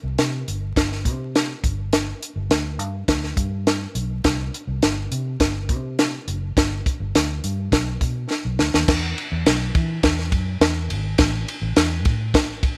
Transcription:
0.03 C2
0.18 C3, snare, closed hi-hat
0.48 G1, closed hi-hat
0.76 G1, kick, snare, closed hi-hat
0.92 snare
1.05 C3, kick, closed hi-hat
1.35 snare, closed hi-hat
1.63 G1, kick, closed hi-hat
1.93 snare, closed hi-hat
2.23 closed hi-hat
2.36 G1
2.50 D2, snare, closed hi-hat
2.79 G2, closed hi-hat
3.08 D2, kick, snare, closed hi-hat
3.24 snare
3.36 G2, kick, closed hi-hat
3.67 snare, closed hi-hat
3.95 B1, closed hi-hat
4.24 C2, kick, snare, closed hi-hat
4.54 closed hi-hat
4.67 C2
4.82 G1, snare, closed hi-hat
5.11 C3, closed hi-hat
5.40 G1, kick, snare, closed hi-hat
5.69 C3, kick, closed hi-hat
5.99 snare, closed hi-hat
6.27 F#1, closed hi-hat
6.57 G1, kick, snare, closed hi-hat
6.86 kick, closed hi-hat
7.00 G1
7.15 D2, snare, closed hi-hat
7.44 G2, closed hi-hat
7.71 B1, kick, snare, closed hi-hat
8.01 B2, kick, closed hi-hat
8.31 snare
8.45 B1
8.59 D2, snare
8.74 D#2, snare
8.88 E2, kick, snare, crash
9.18 ride
9.32 E2
9.45 B1, snare, ride
9.74 E3, kick, ride
10.03 E2, kick, snare, ride
10.19 snare
10.32 F#2, kick, ride
10.60 E2, snare, ride
10.89 G#1, ride
11.18 A1, kick, snare, ride
11.48 ride
11.62 A1
11.76 E2, snare, ride
12.05 A2, kick, ride
12.34 A1, kick, snare, ride
12.63 kick, ride

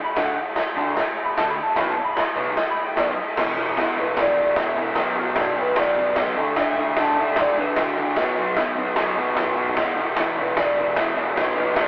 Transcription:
0.04 B5
0.16 D3 A3 D4 F#5, kick, snare, crash
0.56 snare, crash
0.76 D3 A3 D4
0.97 snare, crash
1.24 B5
1.37 D3 A3 D4 A5, snare, crash
1.49 B5
1.63 A5
1.76 B2 F#3 B3 B5, kick, snare, crash
1.90 A5
2.04 B5
2.17 snare, crash
2.35 B2 F#3 B3
2.57 snare, crash
2.70 B5
2.85 G5
2.96 B2 F#3 B3 D5, snare, crash
3.10 D#5
3.37 E2 B2 E3, kick, snare, crash
3.56 E2 B2 E3 G4
3.76 E2 B2 E3, kick, snare, crash
3.81 E4
3.97 E2 B2 E3 B4
4.16 E2 B2 E3, kick, snare, crash
4.20 D5
4.38 E2 B2 E3
4.56 E2 B2 E3, kick, snare, crash
4.61 E5
4.78 E2 B2 E3
4.95 B2 F#3 B3, kick, snare, crash
5.17 B2 F#3 B3 G4
5.36 B2 F#3 B3 D4, kick, snare, crash
5.56 B2 F#3 B3
5.60 B4
5.76 B2 F#3 B3 D5, kick, snare, crash
5.96 B2 F#3 B3
6.16 B2 F#3 B3, kick, snare, crash
6.20 D#5
6.36 D3 A3 D4
6.55 D3 A3 D4 E5, kick, snare, crash
6.76 D3 A3 D4
6.97 D3 A3 D4 A5, kick, snare, crash
7.17 D3 A3 D4 E5
7.36 D3 A3 D4 D5, kick, snare, crash
7.56 D3 A3 D4 B4
7.76 D3 A3 D4 F#4, kick, snare, crash
7.97 D3 A3 D4
8.16 B2 F#3 B3, kick, snare, crash
8.37 B2 F#3 B3
8.57 B2 F#3 B3, kick, snare, crash
8.78 B2 F#3 B3
8.96 B2 F#3 B3, kick, snare, crash
9.18 B2 F#3 B3
9.36 B2 F#3 B3, kick, snare, crash
9.56 B2 F#3 B3
9.76 E2 B2 E3, kick, snare, crash
9.96 E2 B2 E3 G4
10.17 E2 B2 E3 E4, kick, snare, crash
10.36 E2 B2 E3
10.42 B4
10.56 E2 B2 E3 D5, kick, snare, crash
10.77 E2 B2 E3
10.95 E2 B2 E3 E5, kick, snare, crash
11.16 E2 B2 E3
11.36 B2 F#3 B3, kick, snare, crash
11.55 B2 F#3 B3 G4
11.75 B2 F#3 B3, kick, snare, crash
11.80 D4

